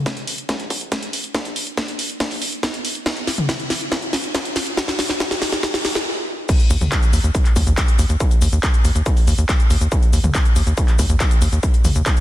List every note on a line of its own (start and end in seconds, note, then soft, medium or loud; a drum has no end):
0.06 kick loud
0.06 snare soft
0.06 closed hi-hat medium
0.17 closed hi-hat medium
0.27 open hi-hat loud
0.38 closed hi-hat medium
0.49 kick loud
0.49 snare soft
0.49 closed hi-hat medium
0.60 closed hi-hat soft
0.70 kick medium
0.70 open hi-hat loud
0.81 closed hi-hat medium
0.92 kick loud
0.92 snare medium
0.92 closed hi-hat medium
1.03 closed hi-hat medium
1.13 open hi-hat loud
1.24 closed hi-hat medium
1.34 kick loud
1.34 snare medium
1.34 closed hi-hat medium
1.45 closed hi-hat medium
1.56 open hi-hat loud
1.67 closed hi-hat soft
1.77 kick loud
1.77 snare medium
1.77 closed hi-hat medium
1.88 closed hi-hat medium
1.99 open hi-hat loud
2.10 closed hi-hat medium
2.20 kick loud
2.20 snare medium
2.20 closed hi-hat medium
2.31 open hi-hat medium
2.42 open hi-hat loud
2.52 closed hi-hat medium
2.63 kick loud
2.63 snare medium
2.63 closed hi-hat medium
2.74 closed hi-hat medium
2.85 open hi-hat loud
2.95 closed hi-hat soft
3.06 kick loud
3.06 snare medium
3.06 closed hi-hat medium
3.17 closed hi-hat soft
3.27 snare medium
3.27 open hi-hat loud
3.38 closed hi-hat soft
3.38 mid tom medium
3.49 kick loud
3.49 snare medium
3.49 closed hi-hat medium
3.60 closed hi-hat medium
3.70 snare medium
3.70 open hi-hat loud
3.81 closed hi-hat soft
3.92 kick loud
3.92 snare medium
3.92 closed hi-hat medium
4.02 closed hi-hat soft
4.13 kick medium
4.13 snare medium
4.13 open hi-hat loud
4.24 closed hi-hat medium
4.35 kick loud
4.35 snare medium
4.35 closed hi-hat medium
4.45 closed hi-hat soft
4.56 snare medium
4.56 open hi-hat loud
4.67 closed hi-hat medium
4.77 kick loud
4.77 snare loud
4.77 closed hi-hat medium
4.88 snare medium
4.88 closed hi-hat soft
4.99 snare medium
4.99 open hi-hat loud
5.10 snare medium
5.20 kick loud
5.20 snare medium
5.20 closed hi-hat medium
5.31 snare medium
5.31 closed hi-hat medium
5.42 snare loud
5.42 open hi-hat loud
5.52 snare medium
5.52 closed hi-hat medium
5.63 kick loud
5.63 snare medium
5.63 closed hi-hat medium
5.74 snare medium
5.74 open hi-hat medium
5.85 kick medium
5.85 snare loud
5.85 open hi-hat loud
5.95 snare loud
5.95 closed hi-hat medium
6.49 kick loud
6.49 closed hi-hat loud
6.49 crash loud
6.49 shaker soft
6.60 closed hi-hat medium
6.60 shaker soft
6.70 6.77 D#2 loud
6.70 open hi-hat loud
6.70 shaker medium
6.81 6.88 D#2 medium
6.81 closed hi-hat medium
6.81 mid tom medium
6.81 shaker soft
6.92 kick loud
6.92 clap loud
6.92 closed hi-hat loud
6.92 shaker soft
7.03 closed hi-hat medium
7.03 shaker soft
7.13 7.20 D#2 medium
7.13 open hi-hat loud
7.13 shaker medium
7.24 7.31 D#2 medium
7.24 closed hi-hat medium
7.24 shaker soft
7.35 kick loud
7.35 closed hi-hat loud
7.35 shaker soft
7.45 clap soft
7.45 closed hi-hat medium
7.45 shaker soft
7.56 7.63 D#2 medium
7.56 kick medium
7.56 open hi-hat loud
7.56 shaker medium
7.67 7.73 D#2 medium
7.67 closed hi-hat medium
7.67 shaker soft
7.78 kick loud
7.78 clap loud
7.78 closed hi-hat medium
7.78 shaker soft
7.88 closed hi-hat medium
7.88 shaker soft
7.99 8.06 D#2 loud
7.99 open hi-hat loud
7.99 shaker medium
8.09 8.16 D#2 medium
8.09 closed hi-hat medium
8.09 shaker soft
8.20 kick loud
8.20 closed hi-hat loud
8.20 shaker soft
8.31 closed hi-hat medium
8.31 shaker soft
8.42 8.48 D#2 medium
8.42 open hi-hat loud
8.42 shaker medium
8.52 8.59 D#2 medium
8.52 closed hi-hat medium
8.52 shaker soft
8.63 kick loud
8.63 clap loud
8.63 closed hi-hat medium
8.63 shaker soft
8.74 closed hi-hat medium
8.74 shaker soft
8.85 8.91 D#2 medium
8.85 open hi-hat loud
8.85 shaker medium
8.95 9.02 D#2 medium
8.95 closed hi-hat medium
8.95 shaker soft
9.06 kick loud
9.06 closed hi-hat medium
9.06 shaker soft
9.17 open hi-hat medium
9.17 shaker soft
9.27 9.34 D#2 loud
9.27 open hi-hat loud
9.27 shaker medium
9.38 9.45 D#2 medium
9.38 closed hi-hat medium
9.38 shaker soft
9.49 kick loud
9.49 clap loud
9.49 closed hi-hat medium
9.49 shaker soft
9.60 closed hi-hat medium
9.60 shaker soft
9.70 9.77 D#2 loud
9.70 open hi-hat loud
9.70 shaker medium
9.81 9.88 D#2 medium
9.81 closed hi-hat medium
9.81 shaker soft
9.92 kick loud
9.92 closed hi-hat medium
9.92 shaker soft
10.03 closed hi-hat soft
10.03 shaker soft
10.13 10.20 D#2 loud
10.13 open hi-hat loud
10.13 shaker medium
10.24 10.30 D#2 medium
10.24 closed hi-hat soft
10.24 mid tom medium
10.24 shaker soft
10.35 kick loud
10.35 clap loud
10.35 closed hi-hat medium
10.35 shaker soft
10.45 closed hi-hat medium
10.45 shaker soft
10.56 10.63 D#2 medium
10.56 open hi-hat loud
10.56 shaker medium
10.67 10.73 D#2 medium
10.67 closed hi-hat medium
10.67 shaker soft
10.77 kick loud
10.77 closed hi-hat medium
10.77 shaker soft
10.88 clap soft
10.88 closed hi-hat medium
10.88 shaker soft
10.99 11.06 D#2 loud
10.99 kick medium
10.99 open hi-hat loud
10.99 shaker medium
11.09 11.16 D#2 medium
11.09 closed hi-hat medium
11.09 shaker soft
11.20 kick loud
11.20 clap loud
11.20 closed hi-hat medium
11.20 shaker soft
11.31 closed hi-hat medium
11.31 shaker soft
11.42 11.48 D#2 medium
11.42 open hi-hat loud
11.42 shaker medium
11.52 11.59 D#2 medium
11.52 closed hi-hat soft
11.52 shaker soft
11.63 kick loud
11.63 closed hi-hat medium
11.63 shaker soft
11.74 closed hi-hat medium
11.74 shaker soft
11.84 11.91 D#2 medium
11.84 open hi-hat loud
11.84 mid tom medium
11.84 shaker medium
11.95 12.02 D#2 medium
11.95 closed hi-hat soft
11.95 shaker soft
12.06 kick loud
12.06 clap loud
12.06 closed hi-hat medium
12.06 shaker soft
12.17 closed hi-hat medium
12.17 shaker soft